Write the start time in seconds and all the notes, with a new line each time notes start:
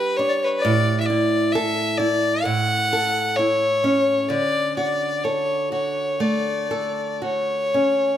Already playing: G3 D4 G4 B4
0.17 D4 C#5
0.29 C#5 D5
0.43 B4 C#5
0.59 D5
0.65 A2
1.01 E5
1.06 E4 D5
1.52 A4 E5
1.98 E4 D5
2.43 A2 F#5
2.93 A4
3.36 E4 C#5
3.84 C#4
4.29 D3 D5
4.77 F#4 D5
5.24 A4 C#5
5.72 F#4 C#5
6.20 A3 D5
6.71 A4
7.22 F#4 C#5
7.74 C#4